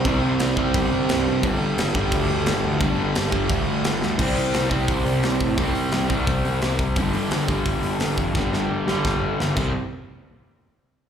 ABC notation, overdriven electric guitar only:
X:1
M:4/4
L:1/8
Q:1/4=173
K:Gmix
V:1 name="Overdriven electric guitar" clef=bass
[C,G,C]3 [C,G,C]4- [C,G,C] | [G,,D,G,]3 [G,,D,G,]4- [G,,D,G,] | [G,,D,G,]3 [G,,D,G,]4- [G,,D,G,] | [C,G,C]3 [C,G,C]4- [C,G,C] |
[C,G,C]3 [C,G,C]4- [C,G,C] | [G,,D,G,]3 [G,,D,G,]4- [G,,D,G,] | [G,,D,G,]3 [G,,D,G,]4 [C,G,C] | z8 |]